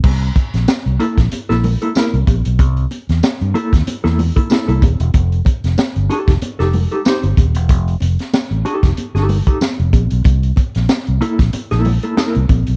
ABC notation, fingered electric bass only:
X:1
M:4/4
L:1/16
Q:"Swing 16ths" 1/4=94
K:Cmix
V:1 name="Fingered electric bass" clef=bass
C,,2 z B,,, z C,, z B,,, z B,,,2 z2 C,, B,,, =B,,, | C,,2 z E,, z G,, z _E,, z =E,,2 z2 C,, _E,,, =E,,, | F,,,2 z F,,, z G,,, z F,,, z F,,,2 z2 G,,, _E,,, =E,,, | F,,,2 F,,, z2 A,,, z F,,, z G,,,2 z2 F,,, B,,, =B,,, |
C,,2 z B,,, z C,, z B,,, z B,,,2 z2 C,, B,,, =B,,, |]